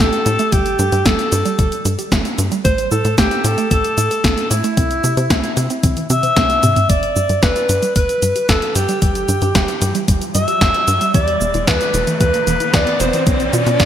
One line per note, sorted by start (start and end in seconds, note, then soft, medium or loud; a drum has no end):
0.00 0.11 A1 medium
0.00 0.11 A3 medium
0.00 0.54 A4 loud
0.13 closed hi-hat soft
0.13 cabasa soft
0.26 0.38 A2 loud
0.26 0.38 A3 medium
0.26 closed hi-hat medium
0.26 cabasa medium
0.39 0.47 A3 loud
0.39 closed hi-hat soft
0.39 cabasa soft
0.52 0.76 G1 loud
0.52 0.64 G3 medium
0.52 1.07 G4 loud
0.52 kick loud
0.52 closed hi-hat medium
0.52 cabasa soft
0.66 closed hi-hat soft
0.66 cabasa soft
0.79 0.91 G2 medium
0.79 0.84 D4 medium
0.79 closed hi-hat soft
0.79 cabasa medium
0.92 1.04 G2 loud
0.92 0.97 G4 medium
0.92 closed hi-hat soft
0.92 cabasa soft
1.06 1.17 G1 medium
1.06 1.18 G3 medium
1.06 1.85 A4 medium
1.06 kick loud
1.06 snare loud
1.06 closed hi-hat medium
1.06 cabasa soft
1.19 closed hi-hat soft
1.19 cabasa soft
1.32 1.44 G2 loud
1.32 1.40 G4 medium
1.32 closed hi-hat medium
1.32 cabasa medium
1.45 1.53 G3 loud
1.45 closed hi-hat soft
1.45 cabasa soft
1.59 1.70 G1 medium
1.59 1.71 G3 medium
1.59 kick loud
1.59 closed hi-hat medium
1.59 cabasa soft
1.72 closed hi-hat soft
1.72 cabasa soft
1.85 1.97 G2 medium
1.85 1.93 G3 loud
1.85 closed hi-hat medium
1.85 cabasa medium
1.99 2.03 G4 medium
1.99 closed hi-hat soft
1.99 cabasa soft
2.12 2.24 G1 loud
2.12 2.24 G3 medium
2.12 kick loud
2.12 snare loud
2.12 closed hi-hat medium
2.12 cabasa soft
2.25 closed hi-hat soft
2.25 cabasa soft
2.38 2.50 G2 loud
2.38 2.50 G3 medium
2.38 closed hi-hat medium
2.38 cabasa medium
2.52 2.60 G3 loud
2.52 closed hi-hat soft
2.52 cabasa soft
2.65 2.88 A1 loud
2.65 2.77 A3 medium
2.65 2.89 C5 loud
2.65 kick loud
2.65 closed hi-hat medium
2.65 cabasa soft
2.78 closed hi-hat soft
2.78 cabasa soft
2.91 3.03 A2 medium
2.91 2.96 E4 medium
2.91 3.16 A4 loud
2.91 cabasa medium
3.05 3.16 A2 medium
3.05 3.09 A4 medium
3.05 closed hi-hat soft
3.05 cabasa soft
3.18 3.30 A1 medium
3.18 3.30 A3 medium
3.18 3.46 G4 loud
3.18 kick loud
3.18 snare loud
3.18 closed hi-hat medium
3.18 cabasa soft
3.31 closed hi-hat soft
3.31 cabasa soft
3.44 3.56 A2 loud
3.44 3.70 A4 loud
3.44 3.52 A4 medium
3.44 closed hi-hat medium
3.44 cabasa medium
3.58 3.66 A3 loud
3.58 closed hi-hat soft
3.58 cabasa soft
3.71 3.83 A1 medium
3.71 3.83 A3 medium
3.71 4.47 A4 loud
3.71 kick loud
3.71 closed hi-hat medium
3.71 cabasa soft
3.84 closed hi-hat soft
3.84 cabasa soft
3.98 4.09 A2 medium
3.98 4.05 A3 loud
3.98 closed hi-hat medium
3.98 cabasa medium
4.11 4.16 A4 medium
4.11 closed hi-hat soft
4.11 cabasa soft
4.24 4.36 A1 medium
4.24 4.36 A3 medium
4.24 kick loud
4.24 snare loud
4.24 closed hi-hat medium
4.24 cabasa soft
4.38 closed hi-hat soft
4.38 cabasa soft
4.51 4.63 A2 loud
4.51 4.63 A3 medium
4.51 6.06 E4 loud
4.51 closed hi-hat medium
4.51 cabasa medium
4.64 4.72 A3 loud
4.64 closed hi-hat soft
4.64 cabasa soft
4.77 5.01 C2 loud
4.77 4.89 C4 medium
4.77 kick loud
4.77 closed hi-hat medium
4.77 cabasa soft
4.91 closed hi-hat soft
4.91 cabasa soft
5.04 5.16 C3 medium
5.04 5.09 G4 medium
5.04 closed hi-hat soft
5.04 cabasa medium
5.17 5.29 C3 medium
5.17 5.22 C5 medium
5.17 closed hi-hat soft
5.17 cabasa soft
5.30 5.42 C2 medium
5.30 5.42 C4 medium
5.30 kick loud
5.30 snare loud
5.30 closed hi-hat medium
5.30 cabasa soft
5.44 closed hi-hat soft
5.44 cabasa soft
5.57 5.69 C3 loud
5.57 5.65 C5 medium
5.57 closed hi-hat medium
5.57 cabasa medium
5.70 5.78 C4 loud
5.70 closed hi-hat soft
5.70 cabasa soft
5.83 5.95 C2 medium
5.83 5.95 C4 medium
5.83 kick loud
5.83 closed hi-hat loud
5.83 high tom medium
5.83 cabasa soft
5.97 closed hi-hat soft
5.97 high tom medium
5.97 cabasa soft
6.10 6.22 C3 loud
6.10 6.18 C4 loud
6.10 6.91 E5 loud
6.10 closed hi-hat medium
6.10 cabasa medium
6.23 6.28 C5 medium
6.23 closed hi-hat soft
6.23 mid tom medium
6.23 cabasa soft
6.36 6.60 C2 loud
6.36 6.48 C4 medium
6.36 kick loud
6.36 snare loud
6.36 closed hi-hat medium
6.36 mid tom medium
6.36 cabasa soft
6.50 closed hi-hat soft
6.50 cabasa soft
6.63 6.75 C3 medium
6.63 6.75 C4 medium
6.63 closed hi-hat medium
6.63 mid tom loud
6.63 cabasa medium
6.76 6.84 C4 loud
6.76 closed hi-hat soft
6.76 mid tom medium
6.76 cabasa soft
6.90 7.13 G1 medium
6.90 7.01 G3 medium
6.90 7.44 D5 loud
6.90 kick loud
6.90 closed hi-hat medium
6.90 riser medium
6.90 cabasa soft
7.03 closed hi-hat soft
7.16 7.28 G2 medium
7.16 7.21 D4 medium
7.16 cabasa medium
7.29 7.41 G2 medium
7.29 7.34 G4 medium
7.29 closed hi-hat soft
7.29 cabasa soft
7.43 7.55 G1 medium
7.43 7.55 G3 medium
7.43 7.95 B4 loud
7.43 kick loud
7.43 snare loud
7.43 closed hi-hat medium
7.43 cabasa soft
7.56 closed hi-hat soft
7.56 cabasa soft
7.69 7.81 G2 loud
7.69 7.77 G4 medium
7.69 closed hi-hat medium
7.69 cabasa medium
7.82 7.90 G3 loud
7.82 closed hi-hat soft
7.82 cabasa soft
7.96 8.08 G1 medium
7.96 8.08 G3 medium
7.96 8.45 B4 loud
7.96 kick loud
7.96 closed hi-hat medium
7.96 cabasa soft
8.09 closed hi-hat soft
8.09 cabasa soft
8.22 8.34 G2 medium
8.22 8.30 G3 loud
8.22 closed hi-hat medium
8.22 cabasa medium
8.36 8.40 G4 medium
8.36 closed hi-hat soft
8.36 cabasa soft
8.49 8.61 G1 loud
8.49 8.61 G3 medium
8.49 8.77 A4 medium
8.49 kick loud
8.49 snare loud
8.49 closed hi-hat medium
8.49 cabasa soft
8.62 closed hi-hat soft
8.75 8.87 G2 loud
8.75 8.87 G3 medium
8.75 9.01 G4 medium
8.75 closed hi-hat medium
8.75 cabasa medium
8.89 8.97 G3 loud
8.89 closed hi-hat soft
8.89 cabasa soft
9.02 9.26 G1 loud
9.02 9.14 G3 medium
9.02 10.04 G4 medium
9.02 kick loud
9.02 closed hi-hat medium
9.02 cabasa soft
9.15 closed hi-hat soft
9.15 cabasa soft
9.28 9.40 G2 medium
9.28 9.33 D4 medium
9.28 closed hi-hat soft
9.28 cabasa medium
9.42 9.54 G2 loud
9.42 9.47 G4 medium
9.42 closed hi-hat soft
9.42 cabasa soft
9.55 9.67 G1 medium
9.55 9.67 G3 medium
9.55 kick loud
9.55 snare loud
9.55 closed hi-hat loud
9.55 cabasa soft
9.68 closed hi-hat soft
9.68 cabasa soft
9.82 9.93 G2 loud
9.82 9.90 G4 medium
9.82 closed hi-hat medium
9.82 cabasa medium
9.95 10.03 G3 loud
9.95 closed hi-hat soft
9.95 cabasa soft
10.08 10.20 G1 medium
10.08 10.20 G3 medium
10.08 kick loud
10.08 closed hi-hat medium
10.08 cabasa soft
10.21 closed hi-hat soft
10.21 cabasa soft
10.35 10.47 G2 medium
10.35 10.43 G3 loud
10.35 11.11 E5 loud
10.35 closed hi-hat medium
10.35 cabasa medium
10.48 10.53 G4 medium
10.48 closed hi-hat soft
10.48 cabasa soft
10.61 10.73 G1 loud
10.61 10.73 G3 medium
10.61 kick loud
10.61 snare loud
10.61 closed hi-hat medium
10.61 cabasa soft
10.74 closed hi-hat soft
10.88 11.00 G2 loud
10.88 11.00 G3 medium
10.88 closed hi-hat medium
10.88 cabasa medium
11.01 11.09 G3 loud
11.01 closed hi-hat soft
11.01 cabasa soft
11.14 11.38 E2 loud
11.14 11.26 E3 medium
11.14 11.69 D5 loud
11.14 kick loud
11.14 closed hi-hat medium
11.14 cabasa soft
11.28 closed hi-hat soft
11.41 11.53 E1 medium
11.41 11.46 B3 medium
11.41 cabasa medium
11.54 11.66 E1 loud
11.54 11.59 E4 medium
11.54 closed hi-hat soft
11.54 cabasa soft
11.67 11.79 E2 medium
11.67 11.79 E3 medium
11.67 12.20 B4 loud
11.67 kick loud
11.67 snare loud
11.67 closed hi-hat medium
11.67 cabasa soft
11.81 closed hi-hat soft
11.81 cabasa soft
11.94 12.06 E1 loud
11.94 12.02 E4 medium
11.94 closed hi-hat medium
11.94 cabasa medium
12.07 12.15 E3 loud
12.07 closed hi-hat soft
12.07 cabasa soft
12.21 12.32 E2 loud
12.21 12.32 E3 medium
12.21 12.75 B4 loud
12.21 kick loud
12.21 closed hi-hat medium
12.21 cabasa soft
12.34 closed hi-hat soft
12.34 cabasa soft
12.47 12.59 E1 medium
12.47 12.55 E3 loud
12.47 closed hi-hat medium
12.47 cabasa medium
12.60 12.65 E4 medium
12.60 closed hi-hat soft
12.60 cabasa soft
12.74 12.85 E2 loud
12.74 12.86 E3 medium
12.74 13.02 D5 loud
12.74 kick loud
12.74 snare loud
12.74 closed hi-hat medium
12.74 cabasa soft
12.87 closed hi-hat soft
13.00 13.12 E1 loud
13.00 13.12 E3 medium
13.00 13.26 C5 medium
13.00 closed hi-hat medium
13.00 cabasa medium
13.13 13.21 E3 loud
13.13 closed hi-hat soft
13.13 cabasa soft
13.27 13.50 B1 loud
13.27 13.39 B3 medium
13.27 13.85 D5 loud
13.27 kick loud
13.27 closed hi-hat medium
13.27 cabasa soft
13.40 closed hi-hat soft
13.40 cabasa soft
13.53 13.65 B2 medium
13.53 13.58 F4 medium
13.53 closed hi-hat soft
13.53 cabasa medium
13.66 13.78 B2 medium
13.66 13.71 B4 medium
13.66 closed hi-hat soft
13.66 cabasa soft
13.80 13.85 B1 medium
13.80 13.85 B3 medium
13.80 kick loud
13.80 snare loud
13.80 closed hi-hat medium
13.80 cabasa soft